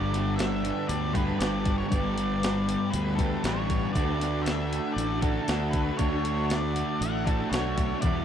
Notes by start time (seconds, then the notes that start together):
Already playing: G1 G2 D3 G3 B3 D4 G4 B4 D5 G5 A5
0.12 D3 G3, snare, open hi-hat
0.36 G2 D3 E5, open hi-hat
0.40 G3, snare
0.63 D3 G3, open hi-hat
0.88 D2 G2 D3 G3 D5, open hi-hat
1.13 G2 G3 B3 D4 G4 B4, kick, open hi-hat
1.17 D3
1.39 G1 G2 D3 G3 B3 D4 G4 D5, snare, open hi-hat
1.65 D3 G3, kick, snare, open hi-hat
1.78 C#5
1.89 G1 G2 B3 D5, kick, open hi-hat
1.93 D3 G3 D4 G4 B5
2.16 D3 G3, open hi-hat
2.41 G2 D3 G3, snare, open hi-hat
2.67 D3 G3, open hi-hat
2.91 D2 G2 D3 B4, open hi-hat
2.95 G3
3.16 G3 G4 A4, kick, open hi-hat
3.20 G2 D3 B3 D4
3.43 A1 G2 D3 G3 B3 D4 C#5, snare, open hi-hat
3.47 G4
3.68 D3 G3, kick, open hi-hat
3.93 D2 D3 A3 D4 D5 F#5 A5 E6, kick, open hi-hat
3.97 D4 F#4
4.19 A3 D4, snare, open hi-hat
4.43 D3 A3 E5, open hi-hat
4.48 D4, snare
4.71 A3 D4, open hi-hat
4.93 A1 D5
4.97 D3 A3 D4, open hi-hat
5.21 D3 D4 F#4 A4, kick, open hi-hat
5.26 A3
5.48 D2 D3 A3 D4 F#4, snare, open hi-hat
5.71 B4, kick, open hi-hat
5.75 A3 D4
5.97 D2 D3 A3 F#4 C#5, kick, open hi-hat
6.02 D4
6.25 A3 D4, open hi-hat
6.48 D3 A3 D5, snare, open hi-hat
6.52 D4
6.75 A3 D4, open hi-hat
7.00 A1 D3 A3 D4 F#5, open hi-hat
7.25 D3 A3 D4 F#4 A4, kick, open hi-hat
7.49 B1 D3 A3 C#5, open hi-hat
7.54 D4 F#4, snare
7.77 A3 D4, kick, open hi-hat
8.01 E2 B2 E3 B4 D5 E5 G5, kick, open hi-hat
8.05 G3 B3 E4